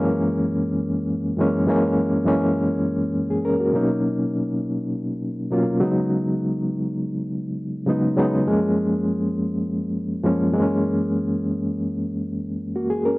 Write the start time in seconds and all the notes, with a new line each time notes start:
Already playing: F#2 E3 G#3 A#3 C#4
1.37 F#2 E3 G#3 A#3 C#4
1.66 F#2 E3 G#3 A#3 C#4
2.25 F#2 E3 G#3 A#3 C#4
3.30 G#4
3.45 C#4 A#4
3.60 A#3 F#4
3.73 B2 F#3 A#3 C#4 D#4
5.50 B2 F#3 A#3 C#4 F4
5.80 C#3 F#3 G#3 B3 D#4
7.86 C#3 F#3 G#3 B3 D#4
8.16 C#3 F#3 G#3 B3 D#4
8.46 F#2 F3 G#3 A#3 C#4
10.23 F#2 F3 G#3 A#3 C#4
10.52 F#2 E3 G#3 A#3 C4
10.62 C#4
12.76 A#3 F#4
12.90 G#4
13.05 C#4 A#4